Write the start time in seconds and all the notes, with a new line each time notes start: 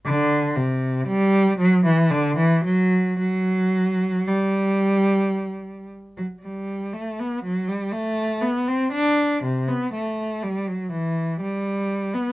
0.05 D3
0.56 C3
1.07 G3
1.58 F#3
1.85 E3
2.11 D3
2.37 E3
2.64 F#3
3.19 F#3
4.28 G3
6.17 F#3
6.42 G3
6.94 A3
7.20 B3
7.44 F#3
7.68 G3
7.92 A3
8.42 B3
8.68 C4
8.92 D4
9.43 C3
9.68 B3
9.93 A3
10.43 G3
10.67 F#3
10.91 E3
11.40 G3
12.14 B3